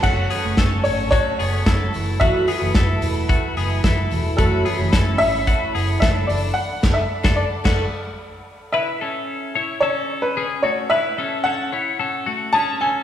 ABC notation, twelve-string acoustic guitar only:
X:1
M:4/4
L:1/16
Q:1/4=110
K:F#m
V:1 name="Twelve-string acoustic guitar"
[F,,C,F,A,CA]2 [F,A,CA] [F,A,CA]3 [F,A,CA]6 [F,A,CA]2 [E,A,FB]2 | [F,,E,F,A,FB]2 [E,A,FB] [E,A,FB]3 [E,A,FB]6 [E,A,FB]2 [E,A,FB]2 | [F,,E,F,A,CB]2 [E,A,CB] [E,A,CB]3 [E,A,CB]6 [E,A,CB]2 [A,DAB]2 | z2 [A,DAB]2 z [A,DAB]2 z [A,DAB]2 z6 |
z16 | z16 |]